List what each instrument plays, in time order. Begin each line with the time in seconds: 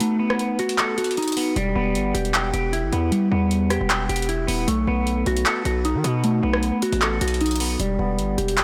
Already playing: clean electric guitar B3 D#4 F#4 A4
0.00 clean electric guitar A3, closed hi-hat
0.19 clean electric guitar B3
0.30 cross-stick
0.39 closed hi-hat
0.59 clean electric guitar F#4, closed hi-hat
0.69 closed hi-hat
0.78 clean electric guitar A4, clap, closed hi-hat
0.98 clean electric guitar F#4, closed hi-hat
1.04 closed hi-hat
1.11 closed hi-hat
1.17 clean electric guitar D#4, closed hi-hat
1.22 closed hi-hat
1.28 closed hi-hat
1.32 closed hi-hat
1.37 clean electric guitar B3, open hi-hat
1.56 808-style bass E1, clean electric guitar G3, closed hi-hat
1.75 808-style bass E1, clean electric guitar B3
1.95 808-style bass G1, closed hi-hat
2.14 808-style bass E1, clean electric guitar G4, closed hi-hat
2.25 closed hi-hat
2.34 clean electric guitar G5, clap, closed hi-hat
2.54 808-style bass E1, clean electric guitar G4, closed hi-hat
2.73 clean electric guitar E4, closed hi-hat
2.83 808-style bass G1
2.92 808-style bass E2, clean electric guitar B3, closed hi-hat
3.12 clean electric guitar G3, closed hi-hat
3.32 808-style bass E2, clean electric guitar B3
3.51 closed hi-hat
3.70 clean electric guitar G4, cross-stick, closed hi-hat
3.81 808-style bass E1
3.89 clean electric guitar G5, clap, closed hi-hat
4.09 808-style bass E1, clean electric guitar G4, closed hi-hat
4.16 closed hi-hat
4.22 closed hi-hat
4.29 clean electric guitar E4, closed hi-hat
4.47 808-style bass D#1, clean electric guitar B3, open hi-hat
4.68 808-style bass B1, clean electric guitar A3, closed hi-hat
4.87 808-style bass B1, clean electric guitar B3
5.07 closed hi-hat
5.26 808-style bass B1, clean electric guitar F#4, closed hi-hat
5.37 closed hi-hat
5.46 clean electric guitar A4, clap, closed hi-hat
5.65 808-style bass B1, clean electric guitar F#4, closed hi-hat
5.85 clean electric guitar D#4, closed hi-hat
5.95 808-style bass D#3
6.04 808-style bass B2, clean electric guitar B3, closed hi-hat
6.24 clean electric guitar A3, closed hi-hat
6.43 808-style bass B1, clean electric guitar B3
6.53 cross-stick
6.63 closed hi-hat
6.82 clean electric guitar F#4, closed hi-hat
6.92 808-style bass A1, closed hi-hat
7.02 clean electric guitar A4, clap, closed hi-hat
7.21 808-style bass B1, clean electric guitar F#4, closed hi-hat
7.28 closed hi-hat
7.34 closed hi-hat
7.41 clean electric guitar D#4, closed hi-hat
7.46 closed hi-hat
7.51 closed hi-hat
7.56 closed hi-hat
7.60 clean electric guitar B3, open hi-hat
7.80 808-style bass E1, clean electric guitar G3, closed hi-hat
7.99 808-style bass E1, clean electric guitar B3
8.19 808-style bass G1, closed hi-hat
8.38 808-style bass E1, clean electric guitar G4, closed hi-hat
8.48 closed hi-hat
8.57 clean electric guitar G5, clap, closed hi-hat